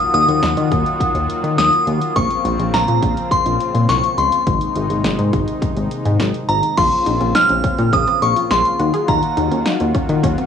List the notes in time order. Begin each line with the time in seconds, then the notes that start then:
Already playing: D#3 F#3 A#3 F4 F#4 D#6
0.00 closed hi-hat
0.14 D#2 D#6, closed hi-hat
0.28 D#2, closed hi-hat
0.43 D#2, snare, closed hi-hat
0.57 D#3, closed hi-hat
0.72 D#2, kick, closed hi-hat
0.86 closed hi-hat
1.00 kick, closed hi-hat
1.15 D#2, closed hi-hat
1.30 closed hi-hat
1.44 D#3, closed hi-hat
1.58 D#2 D#6, snare, closed hi-hat
1.73 closed hi-hat
1.87 D#2, closed hi-hat
2.02 closed hi-hat
2.16 A#1 C#3 F3 C4 C#6, kick, closed hi-hat
2.31 closed hi-hat
2.45 A#1, closed hi-hat
2.59 A#1, closed hi-hat
2.74 A#1 A#5, snare, closed hi-hat
2.88 A#2, closed hi-hat
3.02 A#1, kick, closed hi-hat
3.17 closed hi-hat
3.31 C6, kick, closed hi-hat
3.46 A#1, closed hi-hat
3.61 closed hi-hat
3.75 A#2, closed hi-hat
3.89 C2 C#6, snare, closed hi-hat
4.04 closed hi-hat
4.18 C#2 C6, closed hi-hat
4.32 closed hi-hat
4.47 G#1 C3 D#3 G#3 D#4, kick, closed hi-hat
4.61 closed hi-hat
4.76 G#1, closed hi-hat
4.90 G#1, closed hi-hat
5.04 G#1, snare, closed hi-hat
5.19 G#2, closed hi-hat
5.33 G#1, kick, closed hi-hat
5.48 closed hi-hat
5.62 kick, closed hi-hat
5.77 G#1, closed hi-hat
5.91 closed hi-hat
6.05 G#2, closed hi-hat
6.20 G#1, snare, closed hi-hat
6.34 closed hi-hat
6.49 G#1 A#5, closed hi-hat
6.63 closed hi-hat
6.77 A#1 C#3 F3 A#3 C4 F4 C6, kick, closed hi-hat, crash
6.92 closed hi-hat
7.06 A#1 D#4, closed hi-hat
7.21 A#1 C#4, closed hi-hat
7.35 D#4 F6, snare, closed hi-hat
7.49 A#1 C#4, closed hi-hat
7.64 C#4, kick, closed hi-hat
7.78 A#2, closed hi-hat
7.93 A#1 C#4 D#6, kick, closed hi-hat
8.07 C4, closed hi-hat
8.22 A#1 C#6, closed hi-hat
8.36 F4, closed hi-hat
8.50 A#1 G#4 C6, snare, closed hi-hat
8.65 closed hi-hat
8.79 D#2 D#3 F#3 F#4, closed hi-hat
8.94 G#4, closed hi-hat
9.08 D#2 F4 A#5, kick, closed hi-hat
9.23 closed hi-hat
9.37 D#2 D#4, closed hi-hat
9.52 D#2 C#4, closed hi-hat
9.66 D#4, snare, closed hi-hat
9.80 D#2 C#4, closed hi-hat
9.95 C#4, kick, closed hi-hat
10.09 D#3, closed hi-hat
10.24 D#2 C#4, kick, closed hi-hat
10.38 C4, closed hi-hat